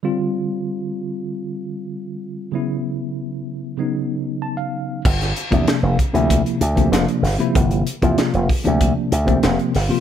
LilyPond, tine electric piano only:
<<
  \new Staff \with { instrumentName = "Tine electric piano" } { \time 4/4 \key g \dorian \tempo 4 = 96 r1 | r2. a''16 f''8. | r1 | r1 | }
  \new Staff \with { instrumentName = "Tine electric piano" } { \clef bass \time 4/4 \key g \dorian <d g c' f'>1 | <cis fis b e'>2 <cis fis b dis'>2 | r8. <c f bes d'>8. r16 <c f bes e'>8. r16 <c f bes d'>8. r16 <c f bes e'>16~ | <c f bes e'>8 r16 <c f bes f'>8. r16 <c f bes d'>8. r16 <c f bes c'>8. r16 <c f bes f'>16 | }
>>